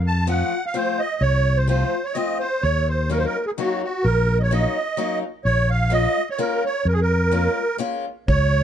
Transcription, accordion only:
0.07 0.27 A5 medium
0.29 0.65 F#5 medium
0.66 0.76 F5 medium
0.76 1.00 C5 medium
0.99 1.22 D#5 medium
1.21 1.58 C#5 medium
1.57 1.67 C5 medium
1.69 2.06 C5 medium
2.05 2.16 C#5 medium
2.14 2.38 D#5 medium
2.39 2.63 C5 medium
2.62 2.89 C#5 medium
2.88 3.12 C5 medium
3.11 3.18 A#4 medium
3.18 3.26 C5 medium
3.25 3.45 A#4 medium
3.46 3.51 G#4 medium
3.59 3.82 F#4 medium
3.83 4.06 F#4 medium
4.04 4.38 A#4 medium
4.40 4.53 C#5 medium
4.40 4.42 D#5 soft
4.52 5.19 D#5 medium
5.45 5.70 C#5 medium
5.70 5.93 F5 medium
5.93 6.29 D#5 loud
6.30 6.40 C#5 medium
6.39 6.64 A#4 medium
6.65 6.87 C#5 medium
6.88 6.94 A#4 medium
6.93 7.00 G#4 medium
7.01 7.77 A#4 medium
8.29 8.63 C#5 medium

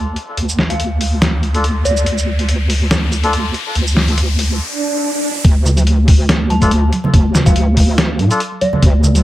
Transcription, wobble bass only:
0.00 0.15 D2 loud
0.37 1.84 D2 loud
1.85 2.05 D2 medium
2.06 3.53 D2 loud
3.75 4.60 D2 loud
5.44 6.91 D2 loud
7.14 8.20 D2 loud
8.19 8.30 A2 loud
8.83 9.23 D2 loud

